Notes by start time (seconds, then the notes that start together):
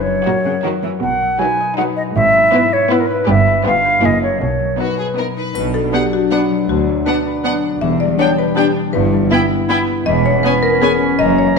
Already playing: F#1 F#2
0.02 C#5
0.06 F#3
0.26 A#2 F#3 F#4 A#4
0.45 C#3 F#5
0.64 D#3 F#3 F#4 A#4
0.83 E3 F#4
1.02 B1 B2 F#5
1.22 F#3
1.39 F#3 D#4 B4 G#5
1.60 D#5
1.77 F#3 D#4 B4 F#5
1.97 D#4 D#5
2.16 G#1 G#2 E5
2.36 B3
2.54 B3 E4 B4
2.73 C#5 E5
2.90 B3 E4 B4
3.00 A#4
3.07 E4 B4
3.28 G1 G2 B3 G4 B4 E5
3.47 E4 B4
3.65 G1 G2 B3 F4 G4 F5
3.85 G4 B4
4.02 F#1 F#2 A#3 E4 G#4 D#5
4.22 E4 A#4 C#5
4.41 B1 B2 C#5
4.59 F#3
4.78 B3 D#4 F#4 B4
4.98 G#4 D#5
5.16 B3 D#4 A#4 B4
5.36 D#4 B4
5.54 B1 B2 F#3 D4 B4, triangle
5.74 B3 A4
5.92 F#3 B3 D4 G4 F#5
6.13 D4 F#4
6.29 B3 D4 B4 F#5
6.50 F#3
6.69 D2 D3 F#4
6.89 F#3
7.05 B3 D4 B4 F#5
7.27 B4
7.44 B3 D4 F#4 F#5
7.64 D4
7.81 E1 E2 E3 G3 D4 E5
8.00 G3 D5
8.18 B3 D4 C#5 G5
8.38 B4
8.54 B3 D4 G4 G5
8.75 D4
8.93 G1 G2 B3 E4 B4
9.13 G3
9.31 B3 E4 E5 G5 B5
9.50 E4
9.68 B3 E4 B4 G5 B5
9.88 B3
10.05 E1 E2 B3 C#4 D#5 B5
10.26 B2 C#5
10.43 B3 C#4 B4 G#5
10.63 C#4 A#4
10.75 A#4
10.82 B3 C#4 G#4 C#5 G#5
11.01 B3
11.19 F#1 F#2 A#3 D#5 A#5
11.38 C#3 C#5